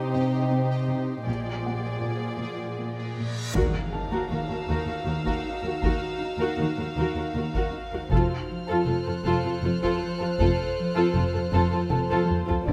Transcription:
Already playing: C3 D#4 G4 C5 D#5 G5 C6
0.13 C3
0.51 C4
0.89 C3
1.26 A#1 A#2 F3 G#4 D5, reverse cymbal
1.66 A#3 F#5
2.04 A#2
2.42 A#2
2.79 A#3
3.18 A#2
3.55 D#2 D#3 D#4 F#4 A#4 F5 A#5, taiko, impact
3.93 D#4 A#4 A5
4.12 D#2 F#4 A#4
4.31 D#2 D#3 F#4 A#4 E6
4.50 D#2 F#4 A#4
4.68 D#2 D#3 F#4 A#4
4.87 D#2 F#4 A#4
5.06 D#2 D#3 F#4 A#4
5.25 D#2 F#4 A#4, taiko
5.46 D#4
5.62 D#2 F#4 A#4
5.82 D#2 D#3 F#4 A#4, taiko
6.21 D#4
6.38 D#2 F#4 A#4
6.58 D#2 D#3 F#4 A#4
6.77 D#2 F#4 A#4
6.96 D#2 D#3 F#4 A#4
7.15 D#2 F#4 A#4
7.33 D#2 D#3 F#4 A#4
7.54 D#2 F#4 A#4, taiko
7.73 D#4
7.91 D#2 F#4 A#4
8.10 F1 F2 F4 A4 C5 F6, taiko
8.49 F3
8.68 F2 F4 A4
8.86 F1 F2 F4 A4 F#6
9.06 F2 F4 A4
9.24 F1 F2 F4 A4
9.44 F2 F4 A4
9.63 F1 F2 F4 A4
9.82 F2 F4 A4, taiko
10.02 F3
10.19 F2 F4 A4
10.39 F1 F2 F4 A4, taiko
10.77 F3
10.96 F2 F4 A4
11.13 F1 F2 F4 A4
11.33 F2 F4 A4
11.53 F1 F2 F4 A4
11.72 F2 F4 A4
11.90 F1 F2 F4 A4 A5
12.09 F2 F4 A4, taiko low-mid
12.29 F3, taiko low-mid
12.47 F2 F4 A4, taiko low
12.66 D2 D3 F4 A4 D5 F5 D6 G#6, taiko

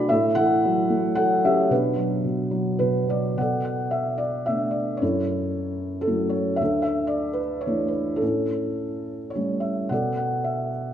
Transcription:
Already playing: B2 F#3 A3 D4 F#4 B4 D5 G5 A5 B5
0.09 A2 A4 E5
0.35 E3 A4 F#5
0.65 F#3
0.90 A3
1.15 F#3 A4 F#5
1.44 C#4 G4 E5
1.70 B2 D4 B4
1.96 F#3
2.24 B2
2.51 F#3
2.79 B2 B4
3.08 F#3 D5
3.37 B2 A4 D5 F#5
3.65 F#5
3.91 E5
4.18 D5
4.46 A3 B3 D4 E5
4.71 D5
4.97 C#5
5.01 F#2 E4 A4
6.01 A4
6.07 F#3 A3 E4
6.29 C#5
6.56 D2 E5
6.62 A4
6.82 E5
7.07 D5
7.33 B4
7.61 C#5
7.67 E3 A3 D4
7.88 B4
8.16 A4
8.21 A2 C#4 E4
9.30 C#5
9.35 G3 A3 C#4
9.60 E5
9.89 B2 A4 D5 F#5
10.17 F#5
10.44 E5

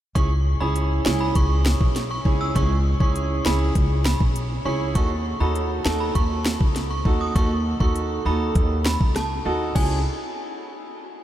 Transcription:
0.15 C#2 C#4 E4 G#4 C#6, kick, closed hi-hat
0.60 C#2 C#4 E4 G#4 B5
0.76 closed hi-hat
1.05 C#2 C#4 E4 G#4 G#5, snare
1.20 B5
1.35 C#2 C#6, kick, closed hi-hat
1.66 snare
1.81 B1, kick
1.96 snare, closed hi-hat
2.11 C#6
2.25 C#2 C#4 E4 G#4, kick
2.41 E6
2.55 C#2 C#4 E4 G#4 C#6, kick, closed hi-hat
3.00 C#2 C#4 E4 G#4 C#6, kick
3.16 closed hi-hat
3.45 C#2 C#4 E4 G#4 B5, snare
3.75 C#2, kick, closed hi-hat
4.05 B5, snare
4.21 B1, kick
4.36 closed hi-hat
4.65 C#2 C#4 E4 G#4 C#6
4.95 D#2 D#4 F#4 A4 C#6, kick, closed hi-hat
5.40 D#2 D#4 F#4 A4 B5
5.55 closed hi-hat
5.85 D#2 D#4 F#4 A4 A5, snare
6.00 B5
6.15 D#2 C#6, kick, closed hi-hat
6.46 snare
6.61 C#2, kick
6.76 snare, closed hi-hat
6.91 C#6
7.05 D#2 D#4 F#4 A4, kick
7.21 D#6
7.35 D#2 D#4 F#4 A4 C#6, kick, closed hi-hat
7.80 D#2 D#4 F#4 A4 C#6, kick
7.96 closed hi-hat
8.25 D#2 D#4 F#4 A4 B5
8.55 D#2, kick, closed hi-hat
8.86 B5, snare
9.01 C#2, kick
9.16 A5, cross-stick, snare, closed hi-hat
9.45 D#2 D#4 F#4 A4
9.75 C#2 C#4 E4 G#4 G#5, kick, crash

